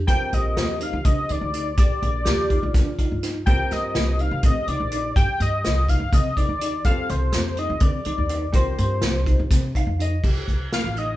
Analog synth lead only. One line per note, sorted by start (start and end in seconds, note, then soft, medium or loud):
0.07 0.35 G5 loud
0.34 0.84 D#5 medium
0.83 1.06 F5 medium
1.05 1.33 D#5 medium
1.31 1.79 D5 medium
1.79 3.20 D5 medium
3.46 3.74 G5 loud
3.72 4.22 D#5 medium
4.21 4.46 F5 medium
4.45 4.69 D#5 loud
4.68 5.15 D5 medium
5.16 5.39 G5 loud
5.42 5.91 D#5 medium
5.89 6.15 F5 medium
6.14 6.38 D#5 medium
6.37 6.85 D5 medium
6.85 7.11 F5 loud
7.10 7.60 C5 medium
7.59 7.84 D#5 medium
7.82 8.55 D5 medium
8.55 9.72 C5 medium
10.73 11.00 F5 loud
10.98 11.16 D#5 loud